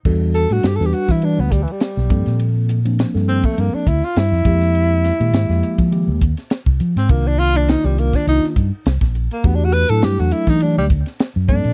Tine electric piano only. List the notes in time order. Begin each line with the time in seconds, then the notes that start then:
0.06 G3 D4 F#4 A4
0.51 G3 D4 F#4 A4
0.80 G3 D4 F#4 B4
1.23 G3 D4 F#4 B4
1.53 F#4 A4
2.11 F3 A#3 C4 A4
2.85 F3 A#3 C4 D4
3.14 F3 A#3 C4 A4
3.58 F3 A#3 C4 A4
3.88 C4 G4
4.46 F3 G#3 A#3 G4
5.20 D#3 G#3 A#3 G4
5.49 F3 G#3 A#3 G4
5.91 D#3 G#3 A#3 G4
6.21 A#3 C4
7.09 D#3 A#3 D4 F4
7.54 D#3 A#3 D4 F4
7.84 D#3 A#3 D4 F4
8.27 D#3 A#3 D4 F4
9.45 A3 D4 F#4 G4
9.90 F#3 A3 D4 E4
10.19 F#3 A3 D4 A4
10.63 F#3 A3 D4 G4
10.91 D4 F#4
11.50 F3 A#3 C4 A4